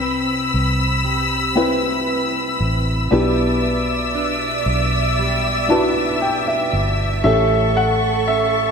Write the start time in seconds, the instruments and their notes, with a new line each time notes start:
Already playing: fingered electric bass C2, felt piano C3 C4 E4 B4, steel-string acoustic guitar C3 B4, string section C4 B5 E6
0.01 steel-string acoustic guitar C4
0.54 fingered electric bass C2
1.05 steel-string acoustic guitar G3
1.55 felt piano C4 E4 B4, steel-string acoustic guitar C4 E4 B4
2.61 fingered electric bass A1
3.11 fingered electric bass B1, steel-string acoustic guitar B2 B4, felt piano B2 D4 E4 G4, string section D5 E5 E6
4.15 steel-string acoustic guitar D4
4.66 fingered electric bass B1
5.19 steel-string acoustic guitar G3
5.68 felt piano D4 E4 F#4 A5, steel-string acoustic guitar D4 E4 B4
6.21 felt piano G5
6.47 felt piano E5
6.73 fingered electric bass G1
7.24 fingered electric bass A1, felt piano A2 C#4 G4 A4, steel-string acoustic guitar A2 A4, string section A4 C#6, grand piano E5
7.77 grand piano F#5
8.28 steel-string acoustic guitar C#4, grand piano E5